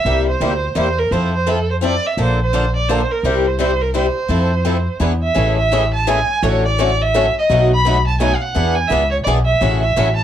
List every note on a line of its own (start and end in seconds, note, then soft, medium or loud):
0.00 0.25 E5 medium
0.05 0.33 C2 medium
0.05 0.27 C3 medium
0.05 0.27 G3 medium
0.05 0.27 A#3 medium
0.05 0.27 E4 medium
0.05 0.27 G4 medium
0.29 0.74 C5 medium
0.40 0.70 D2 medium
0.40 0.52 C3 medium
0.40 0.52 G3 medium
0.40 0.52 A#3 medium
0.40 0.52 E4 medium
0.40 0.52 G4 medium
0.75 1.06 E2 medium
0.75 0.87 C3 medium
0.75 0.87 G3 medium
0.75 0.87 A#3 medium
0.75 0.87 E4 medium
0.75 0.87 G4 medium
0.75 1.00 C5 medium
0.99 1.13 A#4 medium
1.11 1.96 F2 medium
1.11 1.33 F3 medium
1.11 1.33 C4 medium
1.11 1.33 E4 medium
1.11 1.33 A4 medium
1.11 1.33 C5 medium
1.35 1.51 C5 medium
1.46 1.57 F3 medium
1.46 1.58 C4 medium
1.46 1.58 E4 medium
1.46 1.58 A4 medium
1.46 1.70 A4 medium
1.70 1.76 C5 medium
1.83 1.93 F3 medium
1.83 1.94 C4 medium
1.83 1.94 E4 medium
1.83 1.94 A4 medium
1.83 2.08 D5 medium
2.07 2.19 E5 medium
2.17 3.02 A#1 medium
2.17 2.39 D3 medium
2.17 2.39 F3 medium
2.17 2.39 A#3 medium
2.17 2.39 D4 medium
2.17 2.39 A4 medium
2.23 2.40 C5 medium
2.43 2.74 C5 medium
2.53 2.64 D3 medium
2.53 2.64 F3 medium
2.53 2.64 A#3 medium
2.53 2.65 D4 medium
2.53 2.64 A4 medium
2.76 2.90 D5 medium
2.89 3.00 D3 medium
2.89 3.00 F3 medium
2.89 3.00 A#3 medium
2.89 3.00 D4 medium
2.89 3.00 A4 medium
2.89 3.13 C5 medium
3.12 3.49 A#4 medium
3.23 4.08 C2 medium
3.23 3.45 C3 medium
3.23 3.45 G3 medium
3.23 3.45 C4 medium
3.23 3.45 E4 medium
3.23 3.45 G4 medium
3.47 3.59 C5 medium
3.60 3.71 C3 medium
3.60 3.71 G3 medium
3.60 3.71 C4 medium
3.60 3.71 E4 medium
3.60 3.71 G4 medium
3.60 3.83 C5 medium
3.82 3.95 A#4 medium
3.95 4.06 C3 medium
3.95 4.06 G3 medium
3.95 4.06 C4 medium
3.95 4.06 E4 medium
3.95 4.06 G4 medium
3.95 4.98 C5 medium
4.29 4.86 F2 medium
4.29 4.51 F3 medium
4.29 4.51 C4 medium
4.29 4.51 E4 medium
4.29 4.51 A4 medium
4.65 4.76 F3 medium
4.65 4.77 C4 medium
4.65 4.77 E4 medium
4.65 4.77 A4 medium
5.00 5.29 E2 medium
5.00 5.12 E3 medium
5.00 5.12 B3 medium
5.00 5.13 D4 medium
5.00 5.12 G#4 medium
5.00 5.12 B4 medium
5.23 5.56 E5 medium
5.35 6.21 A1 medium
5.35 5.56 C#3 medium
5.35 5.58 E3 medium
5.35 5.58 G#3 medium
5.35 5.57 A3 medium
5.35 5.58 C#4 medium
5.35 5.58 E4 medium
5.35 5.57 G#4 medium
5.35 5.58 A4 medium
5.58 5.91 E5 medium
5.72 5.83 C#3 medium
5.72 5.83 E3 medium
5.72 5.83 G#3 medium
5.72 5.83 A3 medium
5.72 5.83 C#4 medium
5.72 5.83 E4 medium
5.72 5.84 G#4 medium
5.72 5.83 A4 medium
5.94 6.09 A5 medium
6.07 6.18 C#3 medium
6.07 6.18 E3 medium
6.07 6.19 G#3 medium
6.07 6.18 A3 medium
6.07 6.19 C#4 medium
6.07 6.19 E4 medium
6.07 6.18 G#4 medium
6.07 6.19 A4 medium
6.07 6.45 G#5 loud
6.42 7.27 A1 medium
6.42 6.64 D3 medium
6.42 6.64 F#3 medium
6.42 6.63 A3 medium
6.42 6.64 C#4 medium
6.42 6.64 F#4 medium
6.42 6.64 A4 medium
6.42 6.64 C#5 medium
6.65 7.03 D5 medium
6.78 6.89 D3 medium
6.78 6.90 F#3 medium
6.78 6.89 A3 medium
6.78 6.90 C#4 loud
6.78 6.90 F#4 medium
6.78 6.90 A4 medium
7.02 7.36 E5 loud
7.14 7.25 D3 medium
7.14 7.25 F#3 medium
7.14 7.25 A3 medium
7.14 7.25 C#4 medium
7.14 7.25 F#4 medium
7.14 7.25 A4 loud
7.39 7.70 D#5 medium
7.49 8.34 B1 medium
7.49 7.70 B2 medium
7.49 7.70 F#3 medium
7.49 7.70 A3 medium
7.49 7.70 D#4 medium
7.49 7.70 F#4 medium
7.49 7.70 B4 medium
7.73 8.05 B5 loud
7.85 7.95 B2 medium
7.85 7.96 F#3 loud
7.85 7.96 A3 medium
7.85 7.96 D#4 medium
7.85 7.96 F#4 medium
7.85 7.96 B4 loud
8.07 8.19 A5 medium
8.20 8.31 B2 medium
8.20 8.31 F#3 medium
8.20 8.31 A3 medium
8.20 8.31 D#4 medium
8.20 8.31 F#4 medium
8.20 8.31 B4 medium
8.20 8.37 G#5 loud
8.36 8.43 F5 medium
8.42 8.77 F#5 medium
8.55 8.84 E2 medium
8.55 8.76 E3 medium
8.55 8.77 B3 medium
8.55 8.76 D4 medium
8.55 8.77 G#4 medium
8.55 8.77 B4 medium
8.75 8.90 G#5 medium
8.88 9.20 C#2 medium
8.88 9.01 E3 medium
8.88 9.01 B3 medium
8.88 9.01 D4 medium
8.88 9.01 G#4 medium
8.88 9.01 B4 medium
8.88 9.11 E5 medium
9.11 9.17 C#5 medium
9.24 9.56 B1 medium
9.24 9.37 E3 medium
9.24 9.34 D5 medium
9.28 9.38 B3 medium
9.28 9.38 D4 loud
9.28 9.38 G#4 medium
9.28 9.38 B4 medium
9.45 9.79 E5 medium
9.61 9.89 A1 medium
9.61 9.82 C#3 medium
9.61 9.82 E3 medium
9.61 9.83 F#3 medium
9.61 9.83 A3 medium
9.61 9.83 C#4 medium
9.61 9.83 E4 medium
9.61 9.83 F#4 medium
9.82 10.15 E5 medium
9.97 10.24 A1 medium
9.97 10.08 C#3 medium
9.97 10.08 E3 medium
9.97 10.08 F#3 medium
9.97 10.08 A3 medium
9.97 10.08 C#4 medium
9.97 10.08 E4 medium
9.97 10.08 F#4 medium
10.16 10.24 A5 medium